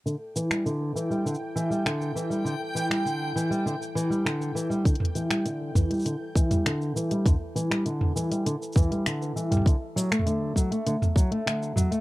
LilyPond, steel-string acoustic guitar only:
\new Staff \with { instrumentName = "Steel-string acoustic guitar" } { \clef bass \time 4/4 \key e \minor \tempo 4 = 100 d16 r16 e16 g16 d8 e16 g16 d16 r16 e16 g16 d8 e16 g16 | d16 r16 e16 g16 d8 e16 g16 d16 r16 e16 g16 d8 e16 g16 | d16 r16 e16 g16 d8 e16 g16 d16 r16 e16 g16 d8 e16 g16 | d16 r16 e16 g16 d8 e16 g16 d16 r16 e16 g16 d8 e16 g16 |
d16 r16 fis16 a16 d8 fis16 a16 d16 r16 fis16 a16 d8 fis16 a16 | }